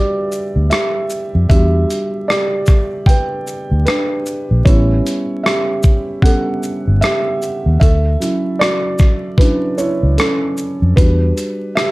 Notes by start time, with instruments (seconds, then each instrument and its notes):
Already playing: felt piano G3 D4 F#4 G4 B4 D5 E5
0.32 shaker
0.56 fingered electric bass D2
0.70 felt piano G4 E5, cross-stick, closed hi-hat
1.10 shaker
1.35 fingered electric bass F2
1.49 fingered electric bass E2, felt piano G3 D4 F#4 G4 E5, kick, closed hi-hat
1.90 closed hi-hat, shaker
2.28 felt piano G4 D5, cross-stick
2.32 closed hi-hat
2.66 kick, cross-stick, shaker
3.06 felt piano B4 G5, kick, closed hi-hat
3.47 shaker
3.71 fingered electric bass D2
3.86 felt piano D4 B4, cross-stick, closed hi-hat
4.26 shaker
4.51 fingered electric bass A#1
4.65 fingered electric bass A1, felt piano G3 B3 C#4 E4 C#5, kick, closed hi-hat
5.07 closed hi-hat, shaker
5.43 felt piano G4 E5, cross-stick
5.48 closed hi-hat
5.83 kick, shaker
6.22 felt piano G3 B3 C#4 A4 F#5, kick, closed hi-hat
6.63 shaker
6.88 fingered electric bass G1
7.01 felt piano G4 E5, cross-stick, closed hi-hat
7.42 shaker
7.66 fingered electric bass D#2
7.80 fingered electric bass D2, felt piano A4 E5, kick, closed hi-hat
8.20 felt piano F#3 C#4 E4, closed hi-hat, shaker
8.59 felt piano F#4 D5, cross-stick
8.64 closed hi-hat
8.98 kick, cross-stick, shaker
9.37 felt piano F#3 C#4 D4 E4 B4, kick, closed hi-hat
9.78 felt piano E4 C#5, shaker
10.03 fingered electric bass C#2
10.18 felt piano C#4 A4, cross-stick, closed hi-hat
10.57 shaker
10.82 fingered electric bass F2
10.96 fingered electric bass E2, felt piano G3 D4 F#4 B4, kick, closed hi-hat
11.38 closed hi-hat, shaker
11.75 felt piano G4 E5, cross-stick, closed hi-hat